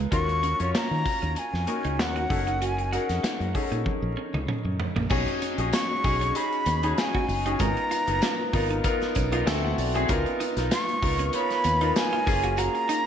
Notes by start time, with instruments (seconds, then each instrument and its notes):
Already playing: grand piano B3 D#4 F4 A#4 B4
0.11 fingered electric bass D#2, grand piano C#4 F4 F#4 A#4, clean electric guitar D#4, flute C#6, kick, closed hi-hat
0.28 muted clean electric guitar stroke, closed hi-hat
0.43 clean electric guitar C#4, closed hi-hat
0.59 fingered electric bass F2, grand piano C#4 F4 F#4 C#5, closed hi-hat
0.74 clean electric guitar A#3, flute A#5, muted fingered electric bass stroke, snare, closed hi-hat
0.91 fingered electric bass D#3
1.05 muted clean electric guitar stroke, kick, open hi-hat
1.22 fingered electric bass D#2, clean electric guitar C#4, closed hi-hat
1.36 flute G#5, muted clean electric guitar stroke, closed hi-hat
1.53 fingered electric bass F2, snare
1.67 clean electric guitar A#3, grand piano C#4 D#4 F#4 A#4, closed hi-hat
1.84 fingered electric bass C#2, clean electric guitar D#4, closed hi-hat
1.99 fingered electric bass D#2, flute F#5, snare, closed hi-hat
2.16 clean electric guitar F#4, closed hi-hat
2.29 fingered electric bass F#1, grand piano C#4 D#4 G#4 A4, muted clean electric guitar stroke, kick, open hi-hat
2.37 grand piano A#4
2.47 clean electric guitar D#4, closed hi-hat
2.62 clean electric guitar F#4, flute G#5, closed hi-hat
2.78 muted clean electric guitar stroke, closed hi-hat
2.92 grand piano C#4 D#4 G#4 A#4, clean electric guitar F#4, flute F#5, closed hi-hat
3.09 fingered electric bass F2, snare, closed hi-hat
3.23 clean electric guitar D#4, muted fingered electric bass stroke, snare, closed hi-hat
3.40 fingered electric bass F#2, closed hi-hat
3.54 grand piano C#4 D#4 G#4 A4, muted clean electric guitar stroke, kick, open hi-hat
3.62 grand piano A#4
3.71 fingered electric bass A#2, clean electric guitar D#4, closed hi-hat
3.86 muted clean electric guitar stroke, kick, high tom
4.02 fingered electric bass A#1
4.17 clean electric guitar C#4
4.33 fingered electric bass C#2, clean electric guitar D#4, mid tom
4.48 clean electric guitar C#4, mid tom
4.65 fingered electric bass F#2, muted clean electric guitar stroke
4.80 floor tom
4.96 fingered electric bass A#1, clean electric guitar A#3, floor tom
5.10 fingered electric bass B1, clean electric guitar B3, grand piano C#4 D#4 F#4 G#4, kick, crash, tambourine
5.28 muted clean electric guitar stroke, closed hi-hat
5.42 clean electric guitar C#4, closed hi-hat, tambourine
5.58 fingered electric bass A#1, grand piano C#4 D#4 F#4 G#4, closed hi-hat
5.73 clean electric guitar B3, flute C#6, snare, closed hi-hat, tambourine
6.04 fingered electric bass B1, grand piano C#4 D#4 F#4 G#4, muted clean electric guitar stroke, kick, open hi-hat, tambourine
6.21 clean electric guitar C#4, closed hi-hat
6.35 grand piano C#4 D#4 F#4 G#4, flute B5, muted clean electric guitar stroke, closed hi-hat
6.53 closed hi-hat
6.66 fingered electric bass D#2, clean electric guitar B3, closed hi-hat, tambourine
6.83 grand piano C#4 D#4 F#4 G#4, clean electric guitar D#4, closed hi-hat
6.98 flute G#5, snare, closed hi-hat, tambourine
7.15 clean electric guitar F#4, kick
7.28 fingered electric bass F#1, muted clean electric guitar stroke, open hi-hat, tambourine
7.45 grand piano C#4 D#4 F#4 G#4, clean electric guitar D#4, closed hi-hat
7.59 fingered electric bass G#1, clean electric guitar G#3, grand piano B3 D#4 F4 A#4, flute A#5, kick, closed hi-hat, tambourine
7.77 muted clean electric guitar stroke, closed hi-hat
7.91 clean electric guitar F4, closed hi-hat, tambourine
8.07 fingered electric bass F#1, grand piano B3 D#4 F4 A#4, closed hi-hat
8.22 clean electric guitar C#4, snare, closed hi-hat, tambourine
8.53 fingered electric bass G#1, grand piano B3 D#4 F4 A#4, muted clean electric guitar stroke, kick, open hi-hat, tambourine
8.70 clean electric guitar D#4, closed hi-hat
8.84 grand piano B3 D#4 F4 A#4, muted clean electric guitar stroke, kick, closed hi-hat, tambourine
9.02 snare, closed hi-hat
9.15 fingered electric bass B1, clean electric guitar C#4, kick, closed hi-hat, tambourine
9.32 grand piano B3 D#4 F4 A#4, clean electric guitar F4, closed hi-hat
9.46 fingered electric bass D2, grand piano C4 E4 F#4 A4 G#5, clean electric guitar D4, snare, closed hi-hat, tambourine
9.63 grand piano F#5, muted clean electric guitar stroke
9.78 fingered electric bass B1, grand piano D5, open hi-hat, tambourine
9.94 grand piano C4 E4 F#4 G#4, clean electric guitar C4, closed hi-hat
10.08 fingered electric bass C#2, grand piano B3 D#4 F4 A#4, clean electric guitar C#4, kick, closed hi-hat, tambourine
10.26 muted clean electric guitar stroke, closed hi-hat
10.40 clean electric guitar D#4, closed hi-hat, tambourine
10.56 fingered electric bass B1, grand piano B3 D#4 F4 A#4, snare, closed hi-hat
10.71 clean electric guitar B3, flute C#6, snare, closed hi-hat, tambourine
10.89 closed hi-hat
11.02 fingered electric bass C#2, grand piano B3 D#4 F4 A#4, muted clean electric guitar stroke, kick, open hi-hat, tambourine
11.19 clean electric guitar C#4, closed hi-hat
11.29 flute C#6, closed hi-hat
11.33 grand piano B3 D#4 F4 C#5, flute B5, muted clean electric guitar stroke
11.50 snare, closed hi-hat
11.64 fingered electric bass D#2, clean electric guitar B3, closed hi-hat, tambourine
11.81 grand piano B3 D#4 F4 A#4, clean electric guitar D#4, closed hi-hat
11.96 flute G#5, snare, closed hi-hat, tambourine
12.13 clean electric guitar F4, closed hi-hat
12.26 fingered electric bass F#1, grand piano A#3 C#4 F4 G#4, muted clean electric guitar stroke, kick, open hi-hat, tambourine
12.44 clean electric guitar F#4, closed hi-hat
12.57 clean electric guitar F#4, flute A#5, closed hi-hat, tambourine
12.75 muted clean electric guitar stroke, closed hi-hat
12.89 clean electric guitar D#4, closed hi-hat, tambourine